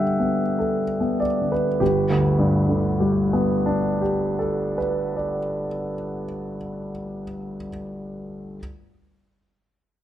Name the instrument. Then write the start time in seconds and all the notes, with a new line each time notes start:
grand piano
Already playing: D3 G3 B3 A4 E5 F#5 G5
0.20 B3
0.59 A4
1.00 B3
1.20 D5
1.41 D3
1.52 B4
1.80 G1 G4
2.10 D2
2.39 G2
2.69 D3
3.00 G3
3.33 B3
3.66 D4
4.01 G4
4.39 A4
4.78 B4
5.16 D5